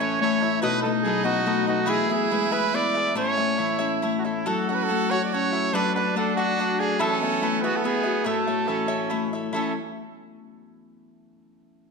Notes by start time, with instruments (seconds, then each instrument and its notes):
Already playing: harp A2 E3 A3, trumpet C#4
0.00 harp C#4, cavaquinho E4 A4 C#5 E5, trumpet C#5
0.21 harp A3, cavaquinho E4 A4 C#5 E5, trumpet C#5
0.42 harp E4, trumpet E4, cavaquinho A4 C#5 E5
0.62 harp B2, trumpet D#4 B4, cavaquinho F#4 A4 B4 D#5
0.82 harp A3, trumpet A4, cavaquinho B4 D#5
0.87 cavaquinho A4
1.03 harp F#3, cavaquinho F#4 A4 B4, trumpet G#4
1.07 cavaquinho D#5
1.24 harp B3, trumpet F#4, cavaquinho F#4 A4 B4 D#5
1.46 harp A3, cavaquinho F#4 A4 B4 D#5
1.66 harp D#4, trumpet F#4, cavaquinho A4 B4 D#5
1.82 trumpet D#4
1.86 harp E3, cavaquinho E4 G#4 B4 E5, trumpet E4 G#4
2.09 harp B3, cavaquinho G#4 B4 E5, trumpet G#4
2.30 harp G#3, cavaquinho E4 G#4 B4 E5
2.50 harp E4, cavaquinho E4 G#4 B4 E5, trumpet B4
2.73 harp B3, cavaquinho E4 G#4 B4 E5, trumpet D5
2.93 cavaquinho G#4 B4 E5, harp E5
3.14 harp A2, trumpet C#4 C#5, cavaquinho E4 A4 C#5 E5
3.37 harp A3, cavaquinho A4 C#5 E5
3.58 harp E3, cavaquinho E4 A4 C#5 E5, trumpet E4
3.79 harp C#4, cavaquinho E4 A4 C#5 E5
4.02 harp A3, cavaquinho E4 A4 C#5 E5
4.19 trumpet F#4
4.24 harp E4, trumpet E4, cavaquinho A4 C#5 E5
4.46 harp F#3, cavaquinho F#4 A4 C#5 F#5, trumpet F#4 A4
4.69 harp C#4, trumpet A4, cavaquinho A4 C#5 F#5
4.75 trumpet B4
4.84 trumpet A4
4.88 harp A3, cavaquinho F#4 A4 C#5 F#5
5.11 harp F#4, cavaquinho F#4 A4 C#5 F#5, trumpet C#5
5.25 trumpet D5
5.32 harp C#4, cavaquinho F#4 A4 C#5 F#5, trumpet C#5
5.52 trumpet E4, cavaquinho A4 C#5 F#5, harp F#5
5.73 harp F#3, trumpet D4 B4, cavaquinho D4 A4 D5 F#5
5.94 harp D4, cavaquinho A4 D5 F#5, trumpet B4
6.15 harp A3, cavaquinho D4 A4 D5 F#5, trumpet A4
6.36 cavaquinho D4 A4 D5 F#5, harp F#4, trumpet F#4
6.58 harp D4, cavaquinho D4 A4 D5 F#5
6.79 trumpet G#4, cavaquinho A4 D5 F#5, harp F#5
6.98 harp E3, trumpet C#4 A4, cavaquinho E4 A4 B4 E5
7.21 harp B3, trumpet A4, cavaquinho A4 B4 E5
7.41 harp A3, cavaquinho E4 A4 B4 E5
7.62 trumpet B3 F#4, harp E4, cavaquinho F#4 G#4 B4 E5
7.76 trumpet A4
7.84 harp B3, cavaquinho F#4 G#4 B4 E5, trumpet G#4
8.03 harp F#4, cavaquinho G#4 B4 E5
8.24 harp A2, trumpet A3 A4, cavaquinho E4 A4 C#5 E5
8.47 harp A3, cavaquinho A4 C#5 E5
8.68 harp E3, trumpet C#4, cavaquinho E4 A4 C#5 E5
8.88 cavaquinho E4 A4 C#5 E5
9.10 harp A3, cavaquinho E4 A4 C#5 E5
9.33 harp E4, cavaquinho A4 C#5 E5
9.52 harp E3 A3 C#4, trumpet C#4 A4, cavaquinho E4 A4 C#5
9.56 harp E4, cavaquinho E5